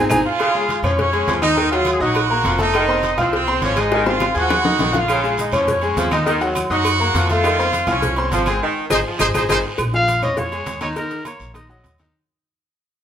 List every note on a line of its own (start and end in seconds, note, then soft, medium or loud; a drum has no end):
0.10 0.21 G#1 medium
0.10 0.19 C4 loud
0.10 0.19 D#4 loud
0.10 0.19 G#4 medium
0.10 0.20 G#5 loud
0.10 cowbell medium
0.10 low conga loud
0.10 high timbale loud
0.10 long guiro loud
0.10 claves loud
0.10 maracas loud
0.25 0.80 F4 loud
0.25 0.80 F5 medium
0.39 0.63 C#3 loud
0.39 cowbell loud
0.39 high conga soft
0.39 low agogo loud
0.39 long guiro medium
0.39 claves medium
0.55 0.79 G#3 medium
0.55 0.79 G#4 medium
0.55 0.79 G#5 medium
0.55 high conga soft
0.69 cowbell medium
0.69 high conga medium
0.69 low timbale medium
0.69 low agogo medium
0.69 short guiro medium
0.83 1.24 F2 loud
0.83 1.07 F3 medium
0.83 1.08 C#4 medium
0.83 0.97 C#4 loud
0.83 1.08 C#5 medium
0.83 0.98 C#5 medium
0.83 1.08 C#6 medium
0.83 high conga soft
0.83 low conga medium
0.83 low agogo loud
0.83 short guiro medium
0.83 claves medium
0.98 1.39 C#4 loud
0.98 1.40 C#5 medium
0.98 cowbell loud
0.98 high conga soft
0.98 low conga medium
0.98 long guiro medium
1.13 1.37 G#3 medium
1.13 1.37 G#4 medium
1.13 1.37 G#5 medium
1.13 high conga soft
1.13 low agogo loud
1.27 1.95 D#2 medium
1.27 1.43 F3 medium
1.27 cowbell medium
1.27 high conga loud
1.27 low timbale medium
1.27 low agogo loud
1.27 short guiro medium
1.42 1.54 D#3 loud
1.42 1.69 D#4 loud
1.42 1.54 D#4 loud
1.42 1.69 D#5 medium
1.42 1.55 D#5 medium
1.42 cowbell medium
1.42 low agogo loud
1.42 short guiro medium
1.42 claves medium
1.56 1.69 D#3 medium
1.56 1.81 D#3 loud
1.56 1.69 D#4 medium
1.56 1.69 D#5 medium
1.56 cowbell loud
1.56 high conga soft
1.56 long guiro medium
1.71 1.96 F#3 medium
1.71 1.92 F4 loud
1.71 1.96 F#4 medium
1.71 1.92 F5 medium
1.71 1.96 F#5 medium
1.71 cowbell medium
1.71 high conga soft
1.85 cowbell medium
1.85 high conga medium
1.85 low timbale medium
1.85 low agogo loud
1.85 short guiro medium
1.85 claves medium
1.92 2.00 G#4 medium
2.00 2.42 A#1 loud
2.00 2.24 F#3 medium
2.00 2.24 D#4 medium
2.00 2.60 F#4 loud
2.00 2.25 D#5 medium
2.00 2.60 F#5 medium
2.00 2.25 D#6 medium
2.00 high conga soft
2.00 short guiro medium
2.15 cowbell loud
2.15 high conga soft
2.15 low agogo loud
2.15 long guiro medium
2.15 claves medium
2.29 2.54 A#3 medium
2.29 2.54 A#4 medium
2.29 2.54 A#5 medium
2.29 high conga soft
2.44 3.13 F1 loud
2.44 2.61 F3 medium
2.44 cowbell medium
2.44 high conga medium
2.44 low timbale loud
2.44 low agogo loud
2.44 short guiro medium
2.58 2.83 A3 medium
2.58 3.15 D#4 loud
2.58 2.83 A4 loud
2.58 3.15 D#5 medium
2.58 2.83 A5 medium
2.58 cowbell medium
2.58 high conga loud
2.58 low agogo medium
2.58 short guiro medium
2.74 2.97 D#3 loud
2.74 cowbell loud
2.74 low agogo loud
2.74 long guiro medium
2.74 claves medium
2.88 3.12 C4 medium
2.88 3.12 C5 medium
2.88 3.13 C6 medium
2.88 high conga soft
3.03 cowbell medium
3.03 high conga medium
3.03 low timbale medium
3.03 low agogo medium
3.03 short guiro medium
3.17 3.59 C2 loud
3.17 3.42 F3 medium
3.17 3.33 C4 medium
3.17 3.42 F4 loud
3.17 3.33 C5 medium
3.17 3.42 F5 medium
3.17 3.42 F6 medium
3.17 high conga soft
3.17 low conga medium
3.17 low agogo medium
3.17 short guiro medium
3.17 claves medium
3.32 3.61 C4 loud
3.32 3.61 C5 medium
3.32 cowbell loud
3.32 high conga soft
3.32 long guiro medium
3.47 3.72 C4 medium
3.47 3.72 C5 medium
3.47 3.72 C6 medium
3.47 high conga soft
3.47 low agogo medium
3.62 4.30 G#1 medium
3.62 3.79 F3 medium
3.62 3.76 C#4 loud
3.62 3.76 C#5 medium
3.62 cowbell medium
3.62 high conga medium
3.62 low timbale loud
3.62 low agogo loud
3.62 short guiro medium
3.76 3.88 G#3 medium
3.76 4.07 D#4 loud
3.76 3.88 G#4 loud
3.76 4.07 D#5 medium
3.76 3.89 G#5 loud
3.76 cowbell medium
3.76 high conga medium
3.76 low agogo loud
3.76 short guiro medium
3.76 claves medium
3.91 4.16 D#3 loud
3.91 4.03 G#3 medium
3.91 4.03 G#4 medium
3.91 4.03 G#5 medium
3.91 cowbell loud
3.91 high bongo medium
3.91 long guiro medium
4.06 4.30 C4 medium
4.06 4.35 F4 loud
4.06 4.30 C5 medium
4.06 4.34 F5 medium
4.06 4.30 C6 medium
4.06 cowbell medium
4.06 high bongo loud
4.06 high conga soft
4.20 cowbell medium
4.20 high bongo medium
4.20 high conga loud
4.20 low timbale medium
4.20 low agogo loud
4.20 short guiro medium
4.20 claves medium
4.34 4.76 D#2 loud
4.34 4.59 F3 medium
4.34 4.95 F#4 loud
4.34 4.59 G#4 medium
4.34 4.95 F#5 loud
4.34 4.59 G#5 medium
4.34 4.59 G#6 medium
4.34 high conga soft
4.34 short guiro medium
4.49 cowbell loud
4.49 low bongo loud
4.49 high conga soft
4.49 low agogo loud
4.49 long guiro medium
4.49 claves medium
4.64 4.89 D#4 medium
4.64 4.89 D#5 medium
4.64 4.89 D#6 medium
4.64 low bongo loud
4.64 high conga soft
4.79 5.47 A#1 medium
4.79 4.95 D#3 medium
4.79 cowbell medium
4.79 low bongo medium
4.79 high conga medium
4.79 low timbale loud
4.79 low agogo medium
4.79 short guiro medium
4.92 5.17 F3 medium
4.92 5.18 F4 medium
4.92 5.18 F5 medium
4.92 cowbell medium
4.92 low bongo medium
4.92 high conga loud
4.92 low agogo medium
4.92 short guiro medium
4.97 5.39 F4 loud
4.97 5.39 F5 medium
5.08 5.32 C#3 loud
5.08 cowbell loud
5.08 high conga soft
5.08 low agogo loud
5.08 long guiro medium
5.08 claves medium
5.08 maracas medium
5.23 5.48 G#3 medium
5.23 5.48 G#4 medium
5.23 5.48 G#5 medium
5.23 high conga soft
5.23 maracas soft
5.38 5.53 D#4 medium
5.38 5.53 D#5 medium
5.38 cowbell medium
5.38 high conga medium
5.38 low timbale medium
5.38 low agogo medium
5.38 short guiro medium
5.38 maracas medium
5.52 5.94 F2 loud
5.52 5.76 F3 medium
5.52 5.77 C#4 medium
5.52 5.68 C#4 medium
5.52 5.77 C#5 medium
5.52 5.67 C#5 medium
5.52 5.77 C#6 medium
5.52 high conga soft
5.52 low conga medium
5.52 low agogo loud
5.52 short guiro medium
5.52 claves medium
5.52 maracas soft
5.67 6.09 C#4 medium
5.67 6.09 C#5 medium
5.67 cowbell loud
5.67 high conga soft
5.67 low conga medium
5.67 long guiro medium
5.67 maracas medium
5.82 6.06 G#3 medium
5.82 6.07 G#4 medium
5.82 6.07 G#5 medium
5.82 high conga soft
5.82 low agogo medium
5.82 maracas soft
5.97 6.65 D#2 medium
5.97 6.13 F3 medium
5.97 cowbell medium
5.97 high conga loud
5.97 low timbale loud
5.97 low agogo loud
5.97 short guiro medium
5.97 maracas medium
6.11 6.24 D#3 loud
6.11 6.23 D#4 loud
6.11 6.25 D#4 loud
6.11 6.24 D#5 loud
6.11 6.26 D#5 medium
6.11 cowbell medium
6.11 high conga medium
6.11 low agogo loud
6.11 short guiro medium
6.11 claves medium
6.11 maracas soft
6.26 6.49 D#3 loud
6.26 6.39 D#3 medium
6.26 6.33 D#4 medium
6.26 6.38 D#4 medium
6.26 6.39 D#5 medium
6.26 6.34 D#5 medium
6.26 cowbell loud
6.26 high conga soft
6.26 long guiro medium
6.26 maracas medium
6.41 6.65 F#3 medium
6.41 6.65 F#4 medium
6.41 6.65 F#5 medium
6.41 cowbell medium
6.41 high conga soft
6.41 maracas soft
6.55 cowbell medium
6.55 high conga medium
6.55 low timbale medium
6.55 low agogo loud
6.55 short guiro medium
6.55 claves medium
6.55 maracas medium
6.70 7.11 F#2 loud
6.70 6.93 F#3 medium
6.70 6.94 D#4 medium
6.70 7.25 F#4 loud
6.70 6.94 D#5 medium
6.70 7.26 F#5 loud
6.70 6.95 D#6 medium
6.70 high conga soft
6.70 short guiro medium
6.70 maracas soft
6.84 cowbell loud
6.84 high conga soft
6.84 low agogo loud
6.84 long guiro medium
6.84 claves medium
6.84 maracas medium
7.00 7.24 A#3 medium
7.00 7.24 A#4 medium
7.00 7.24 A#5 medium
7.00 high conga soft
7.00 maracas soft
7.14 7.82 F2 medium
7.14 7.30 F3 loud
7.14 cowbell medium
7.14 high conga medium
7.14 low timbale loud
7.14 low agogo medium
7.14 short guiro medium
7.14 maracas medium
7.29 7.53 A3 medium
7.29 7.88 F4 loud
7.29 7.54 A4 medium
7.29 7.89 F5 medium
7.29 7.54 A5 medium
7.29 cowbell medium
7.29 high conga medium
7.29 low agogo medium
7.29 short guiro medium
7.29 maracas soft
7.44 7.67 D#3 loud
7.44 cowbell loud
7.44 high conga soft
7.44 low agogo loud
7.44 long guiro medium
7.44 claves medium
7.44 maracas medium
7.59 7.83 C4 medium
7.59 7.83 C5 medium
7.59 7.83 C6 medium
7.59 high conga soft
7.59 maracas soft
7.73 cowbell medium
7.73 high conga medium
7.73 low timbale medium
7.73 low agogo medium
7.73 short guiro medium
7.73 maracas medium
7.87 8.28 C2 loud
7.87 8.11 F3 medium
7.87 8.29 C#4 loud
7.87 8.11 F4 medium
7.87 8.30 C#5 medium
7.87 8.12 F5 medium
7.87 8.12 F6 medium
7.87 high conga soft
7.87 low conga medium
7.87 low agogo loud
7.87 short guiro medium
7.87 claves medium
7.87 maracas soft
8.02 cowbell loud
8.02 high conga soft
8.02 low conga medium
8.02 long guiro medium
8.02 maracas medium
8.16 8.41 C4 medium
8.16 8.42 C5 medium
8.16 8.42 C6 medium
8.16 high conga soft
8.16 low agogo medium
8.16 maracas soft
8.31 8.59 G#1 medium
8.31 8.47 F3 loud
8.31 cowbell medium
8.31 high conga medium
8.31 low timbale loud
8.31 low agogo loud
8.31 short guiro medium
8.31 maracas medium
8.46 8.59 G#3 medium
8.46 8.60 C4 medium
8.46 8.59 G#4 loud
8.46 8.60 C5 medium
8.46 8.59 G#5 loud
8.46 cowbell medium
8.46 high conga medium
8.46 low agogo loud
8.46 short guiro medium
8.46 claves medium
8.46 maracas soft
8.62 8.85 D#3 loud
8.90 9.01 G#1 loud
8.90 8.99 D#4 loud
8.90 9.00 G#4 loud
8.90 8.98 G#4 loud
8.90 9.00 C5 medium
8.90 8.98 C5 loud
8.90 9.00 D#5 loud
8.90 cowbell loud
8.90 high conga loud
8.90 high timbale loud
8.90 long guiro loud
8.90 claves medium
8.90 maracas loud
9.07 9.29 F3 medium
9.19 9.31 G#1 loud
9.19 9.27 D#4 loud
9.19 9.29 G#4 medium
9.19 9.27 G#4 loud
9.19 9.27 C5 loud
9.19 9.29 C5 medium
9.19 9.29 D#5 loud
9.19 cowbell loud
9.19 high conga loud
9.19 high timbale loud
9.19 claves loud
9.19 maracas loud
9.34 9.46 G#1 medium
9.34 9.43 D#4 medium
9.34 9.44 G#4 loud
9.34 9.43 G#4 medium
9.34 9.42 C5 medium
9.34 9.45 C5 loud
9.34 9.44 D#5 medium
9.34 cowbell loud
9.34 high conga loud
9.34 high timbale loud
9.34 long guiro loud
9.34 claves loud
9.34 maracas loud
9.49 9.60 G#1 loud
9.49 9.65 D#3 medium
9.49 9.56 D#4 loud
9.49 9.59 G#4 loud
9.49 9.56 G#4 loud
9.49 9.59 C5 loud
9.49 9.57 C5 loud
9.49 9.59 D#5 loud
9.49 cowbell loud
9.49 high conga loud
9.49 high timbale loud
9.49 long guiro loud
9.49 claves loud
9.49 maracas loud
9.78 10.20 A#1 loud
9.78 cowbell loud
9.78 high conga soft
9.78 low agogo loud
9.78 long guiro medium
9.78 claves medium
9.78 maracas medium
9.93 10.17 F3 medium
9.93 10.18 F4 medium
9.93 10.18 F5 medium
9.93 10.21 F5 loud
9.93 maracas soft
10.08 cowbell medium
10.08 high conga medium
10.08 low timbale medium
10.08 low agogo medium
10.08 short guiro medium
10.08 maracas medium
10.22 10.64 F2 medium
10.22 10.35 C#4 medium
10.22 10.35 C#5 medium
10.22 10.40 D#5 medium
10.22 10.35 C#6 medium
10.22 high conga soft
10.22 low conga medium
10.22 low agogo loud
10.22 short guiro medium
10.22 claves medium
10.22 maracas soft
10.37 10.49 F3 medium
10.37 10.49 F4 medium
10.37 10.82 C#5 loud
10.37 10.50 F5 medium
10.37 cowbell loud
10.37 high conga soft
10.37 low conga medium
10.37 long guiro medium
10.37 maracas medium
10.52 10.76 G#3 medium
10.52 10.77 G#4 medium
10.52 10.77 G#5 medium
10.52 high conga soft
10.52 low agogo medium
10.52 maracas soft
10.66 10.93 D#2 medium
10.66 cowbell medium
10.66 high conga medium
10.66 low timbale medium
10.66 low agogo medium
10.66 short guiro medium
10.66 maracas medium
10.81 10.93 D#3 loud
10.81 10.94 D#4 loud
10.81 10.89 C#5 loud
10.81 10.94 D#5 medium
10.81 cowbell medium
10.81 high conga medium
10.81 low agogo loud
10.81 short guiro medium
10.81 claves medium
10.81 maracas soft
10.96 11.20 D#3 medium
10.96 11.20 D#4 medium
10.96 11.24 A#4 loud
10.96 11.21 D#5 medium
10.96 cowbell loud
10.96 high conga soft
10.96 long guiro medium
10.96 maracas medium
11.11 cowbell medium
11.11 high conga soft
11.11 maracas soft
11.25 11.49 A#3 medium
11.25 11.50 A#4 medium
11.25 11.54 C#5 medium
11.25 11.50 A#5 medium
11.25 cowbell medium
11.25 high conga medium
11.25 low timbale medium
11.25 low agogo loud
11.25 short guiro medium
11.25 claves medium
11.25 maracas medium
11.40 11.81 A#1 medium
11.40 high conga soft
11.40 short guiro medium
11.40 maracas soft
11.54 11.67 D#3 medium
11.54 11.67 D#4 medium
11.54 11.67 D#5 medium
11.54 11.69 D#5 loud
11.54 cowbell loud
11.54 low agogo loud
11.54 long guiro medium
11.54 claves medium
11.54 maracas medium
11.69 11.94 F#3 medium
11.69 11.94 F#4 medium
11.69 11.97 D#5 medium
11.69 11.94 F#5 medium
11.69 maracas soft
11.84 12.11 D#2 medium
11.84 cowbell medium
11.84 high conga medium
11.84 low timbale medium
11.84 low agogo medium
11.84 short guiro medium
11.84 maracas medium
11.98 12.12 D#3 loud
11.98 12.12 D#4 medium
11.98 12.12 D#5 medium
11.98 cowbell medium
11.98 high conga medium
11.98 low agogo medium
11.98 short guiro medium